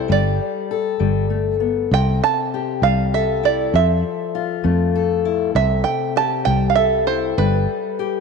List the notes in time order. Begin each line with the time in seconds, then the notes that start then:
Already playing: G4 A4
0.08 G1 G3 D5
0.71 A4
1.00 G1 G3
1.30 A3
1.60 B3
1.91 C2 C3 G5
2.24 A5
2.54 G4
2.82 C2 G3 F5
3.14 A4 E5
3.43 E4 D5
3.74 F2 F3 E5
4.35 F4
4.64 F2 A3
4.96 A4
5.25 E4
5.55 C2 C3 E5
5.84 G5
6.16 G4 A5
6.45 C2 G3 G5
6.70 F5
6.76 A4 E5
7.07 E4 C5
7.38 G1 G3 B4
7.99 G4